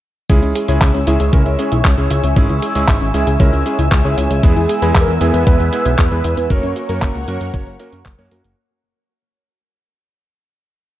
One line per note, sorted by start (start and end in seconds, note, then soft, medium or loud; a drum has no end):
0.30 0.40 C#2 loud
0.30 0.65 G#3 medium
0.30 0.38 C#4 medium
0.30 0.65 C#4 medium
0.30 0.65 E4 medium
0.30 0.65 G#4 loud
0.30 4.40 C#5 medium
0.30 4.40 E5 medium
0.30 6.46 G#5 medium
0.30 6.46 E6 medium
0.30 kick loud
0.30 closed hi-hat medium
0.42 0.53 C#2 medium
0.42 0.48 E4 medium
0.42 closed hi-hat soft
0.55 0.64 G#4 medium
0.55 closed hi-hat medium
0.68 0.79 C#2 medium
0.68 0.97 G#3 medium
0.68 0.97 C#4 medium
0.68 0.97 E4 medium
0.68 0.97 G#4 loud
0.68 0.77 C#5 loud
0.68 closed hi-hat soft
0.81 0.92 C#2 loud
0.81 0.86 E5 medium
0.81 kick loud
0.81 clap loud
0.81 closed hi-hat medium
0.94 1.05 C#2 medium
0.94 1.03 C#4 medium
0.94 closed hi-hat soft
1.07 1.18 C#2 loud
1.07 1.30 G#3 medium
1.07 1.30 C#4 medium
1.07 1.16 E4 loud
1.07 1.30 E4 medium
1.07 1.30 G#4 loud
1.07 closed hi-hat medium
1.20 1.31 C#2 medium
1.20 1.32 G#4 medium
1.20 closed hi-hat medium
1.33 1.44 C#2 loud
1.33 1.55 G#3 medium
1.33 1.55 C#4 medium
1.33 1.55 E4 medium
1.33 1.55 A#4 medium
1.33 1.38 C#5 loud
1.33 kick loud
1.33 closed hi-hat medium
1.46 1.57 C#2 medium
1.46 1.51 E5 medium
1.46 closed hi-hat soft
1.59 1.77 G#3 medium
1.59 1.67 C#4 medium
1.59 1.77 C#4 medium
1.59 1.77 E4 medium
1.59 1.77 G#4 medium
1.59 closed hi-hat medium
1.72 1.82 B1 medium
1.72 1.80 E4 medium
1.72 closed hi-hat medium
1.85 1.95 C#2 loud
1.85 1.93 G#4 medium
1.85 kick loud
1.85 clap loud
1.85 closed hi-hat medium
1.98 2.08 C#2 medium
1.98 2.34 G#3 medium
1.98 2.34 C#4 medium
1.98 2.34 E4 medium
1.98 2.33 G#4 medium
1.98 2.06 C#5 medium
1.98 closed hi-hat soft
2.10 2.21 C#2 medium
2.10 2.19 E5 loud
2.10 closed hi-hat loud
2.24 2.34 C#2 medium
2.24 2.35 C#4 medium
2.24 closed hi-hat medium
2.36 2.47 G#1 loud
2.36 2.72 G#3 loud
2.36 2.45 C#4 medium
2.36 2.72 C#4 medium
2.36 2.72 E4 medium
2.36 2.72 G#4 loud
2.36 kick loud
2.36 closed hi-hat medium
2.49 2.60 C#2 medium
2.49 2.55 E4 medium
2.49 closed hi-hat soft
2.62 2.71 G#4 medium
2.62 closed hi-hat medium
2.75 2.86 C#2 medium
2.75 3.04 G#3 medium
2.75 3.04 C#4 medium
2.75 3.04 E4 medium
2.75 3.04 G#4 loud
2.75 2.84 C#5 loud
2.75 closed hi-hat medium
2.88 2.99 G#1 medium
2.88 2.93 E5 medium
2.88 kick loud
2.88 clap loud
2.88 closed hi-hat medium
3.01 3.12 G#1 medium
3.01 3.10 C#4 medium
3.01 closed hi-hat soft
3.14 3.25 C#2 medium
3.14 3.37 G#3 medium
3.14 3.37 C#4 medium
3.14 3.23 E4 loud
3.14 3.37 E4 medium
3.14 3.37 G#4 medium
3.14 closed hi-hat medium
3.27 3.38 C#2 medium
3.27 3.39 G#4 medium
3.27 closed hi-hat medium
3.40 3.51 C#2 loud
3.40 3.62 G#3 medium
3.40 3.62 C#4 medium
3.40 3.62 E4 medium
3.40 3.62 A#4 medium
3.40 3.45 C#5 loud
3.40 kick loud
3.40 closed hi-hat medium
3.53 3.63 C#2 medium
3.53 3.58 E5 medium
3.53 closed hi-hat soft
3.66 3.84 G#3 medium
3.66 3.74 C#4 medium
3.66 3.84 C#4 medium
3.66 3.84 E4 medium
3.66 3.84 G#4 medium
3.66 closed hi-hat medium
3.79 3.89 C#2 medium
3.79 3.87 E4 medium
3.79 closed hi-hat medium
3.92 4.02 C#2 loud
3.92 4.00 G#4 medium
3.92 kick loud
3.92 clap loud
3.92 closed hi-hat medium
4.04 4.15 C#2 medium
4.04 4.40 G#3 medium
4.04 4.40 C#4 medium
4.04 4.40 E4 medium
4.04 4.40 G#4 medium
4.04 4.13 C#5 medium
4.04 closed hi-hat soft
4.17 4.28 C#2 medium
4.17 4.26 E5 loud
4.17 closed hi-hat medium
4.30 4.41 C#2 medium
4.30 4.43 C#4 medium
4.30 closed hi-hat medium
4.43 4.54 E2 loud
4.43 4.79 G#3 loud
4.43 4.52 B3 medium
4.43 4.79 B3 medium
4.43 6.48 B3 medium
4.43 4.79 E4 medium
4.43 4.97 G#4 medium
4.43 4.79 G#4 loud
4.43 6.48 E5 medium
4.43 kick loud
4.43 closed hi-hat soft
4.56 4.67 E2 medium
4.56 4.61 E4 medium
4.56 closed hi-hat soft
4.69 4.78 G#4 medium
4.69 closed hi-hat medium
4.82 4.93 E2 medium
4.82 5.11 G#3 medium
4.82 5.11 B3 medium
4.82 5.11 E4 medium
4.82 5.11 G#4 loud
4.82 4.91 B4 loud
4.82 closed hi-hat soft
4.95 5.06 E2 loud
4.95 5.31 A#4 loud
4.95 5.00 E5 medium
4.95 kick loud
4.95 clap loud
4.95 closed hi-hat soft
5.08 5.19 E2 medium
5.08 5.16 B3 medium
5.08 closed hi-hat soft
5.21 5.32 E2 medium
5.21 5.44 G#3 medium
5.21 5.44 B3 medium
5.21 5.29 E4 loud
5.21 5.44 E4 medium
5.21 5.44 G#4 loud
5.21 closed hi-hat medium
5.34 5.44 E2 medium
5.34 5.46 G#4 medium
5.34 5.40 B4 medium
5.34 closed hi-hat medium
5.47 5.57 E2 loud
5.47 5.69 G#3 medium
5.47 5.69 B3 medium
5.47 5.69 E4 medium
5.47 5.52 B4 medium
5.47 5.97 B4 loud
5.47 5.69 B4 medium
5.47 kick loud
5.47 closed hi-hat medium
5.60 5.70 E2 medium
5.60 5.65 E5 medium
5.60 closed hi-hat soft
5.73 5.91 G#3 medium
5.73 5.81 B3 medium
5.73 5.91 B3 medium
5.73 5.91 E4 medium
5.73 5.91 G#4 medium
5.73 closed hi-hat medium
5.86 5.96 B1 medium
5.86 5.94 E4 medium
5.86 closed hi-hat medium
5.98 6.09 E2 loud
5.98 6.07 G#4 medium
5.98 6.52 B4 loud
5.98 kick loud
5.98 clap loud
5.98 closed hi-hat soft
6.11 6.22 E2 medium
6.11 6.47 G#3 medium
6.11 6.47 B3 medium
6.11 6.47 E4 medium
6.11 6.47 G#4 medium
6.11 6.20 B4 medium
6.11 closed hi-hat soft
6.24 6.35 E2 medium
6.24 6.33 E5 loud
6.24 closed hi-hat medium
6.37 6.48 E2 medium
6.37 6.50 B3 medium
6.37 closed hi-hat soft
6.50 6.61 F#1 loud
6.50 6.59 A#3 medium
6.50 6.86 A#3 loud
6.50 6.86 C#4 medium
6.50 6.86 F#4 medium
6.50 8.55 A#4 medium
6.50 6.86 A#4 loud
6.50 6.98 C#5 loud
6.50 8.55 C#5 medium
6.50 8.55 F#5 medium
6.50 8.55 C#6 medium
6.50 kick loud
6.50 closed hi-hat soft
6.63 6.74 F#2 medium
6.63 6.68 C#4 medium
6.63 closed hi-hat soft
6.76 6.85 F#4 medium
6.76 closed hi-hat medium
6.89 7.00 F#2 medium
6.89 7.18 A#3 loud
6.89 7.18 C#4 medium
6.89 7.18 F#4 medium
6.89 6.98 A#4 loud
6.89 7.18 A#4 loud
6.89 closed hi-hat soft
7.02 7.13 F#1 medium
7.02 7.07 C#5 medium
7.02 kick loud
7.02 clap loud
7.02 closed hi-hat soft
7.15 7.26 C#2 medium
7.15 7.23 A#3 medium
7.15 closed hi-hat soft
7.28 7.38 F#2 medium
7.28 7.51 A#3 medium
7.28 7.36 C#4 loud
7.28 7.51 C#4 medium
7.28 7.51 F#4 medium
7.28 7.51 A#4 loud
7.28 closed hi-hat medium
7.41 7.51 F#2 medium
7.41 7.53 F#4 medium
7.41 closed hi-hat medium
7.54 7.64 F#1 loud
7.54 7.76 A#3 medium
7.54 7.76 C#4 medium
7.54 7.76 F#4 medium
7.54 7.59 A#4 medium
7.54 7.76 C#5 medium
7.54 kick loud
7.54 closed hi-hat soft
7.67 7.77 F#1 medium
7.67 7.72 C#5 medium
7.67 closed hi-hat soft
7.80 7.98 A#3 medium
7.80 7.98 C#4 medium
7.80 7.85 F#4 medium
7.80 7.98 F#4 medium
7.80 7.98 A#4 loud
7.80 closed hi-hat medium
7.93 8.03 F#2 medium
7.93 8.05 C#4 medium
7.93 closed hi-hat medium
8.06 8.16 F#1 loud
8.06 8.11 A#3 medium
8.06 kick loud
8.06 clap loud
8.06 closed hi-hat soft
8.18 8.29 F#2 medium
8.18 8.27 A#3 medium
8.18 8.28 A#3 loud
8.18 8.28 C#4 medium
8.18 8.28 F#4 medium
8.18 8.28 C#5 loud
8.18 closed hi-hat soft
8.31 8.42 F#2 medium
8.31 8.54 A#3 medium
8.31 8.40 A#3 medium
8.31 8.54 C#4 medium
8.31 8.54 F#4 medium
8.31 8.54 A#4 medium
8.31 closed hi-hat medium
8.44 8.55 F#1 medium
8.44 8.57 A#3 medium
8.44 closed hi-hat soft